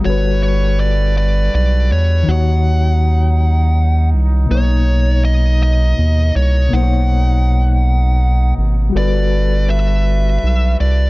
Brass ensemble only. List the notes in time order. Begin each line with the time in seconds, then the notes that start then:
0.04 G3 D4 F#4 A4 B4
2.26 F#3 C#4 D#4
4.49 B2 A#3
8.93 G3 D4 F#4 A4 B4